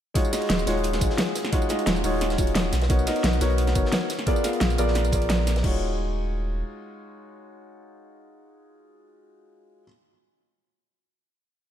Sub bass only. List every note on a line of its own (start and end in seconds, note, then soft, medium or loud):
0.50 0.65 D#1 loud
0.67 1.00 D#1 loud
1.01 1.09 A#1 loud
1.87 2.02 D#1 loud
2.04 2.37 D#1 loud
2.38 2.71 D#1 medium
2.73 3.06 B1 medium
3.24 3.40 B1 loud
3.41 3.74 B1 loud
3.75 3.84 F#1 loud
4.61 4.77 A#1 loud
4.78 5.11 A#1 loud
5.13 5.63 A#1 loud
5.64 6.63 D#1 loud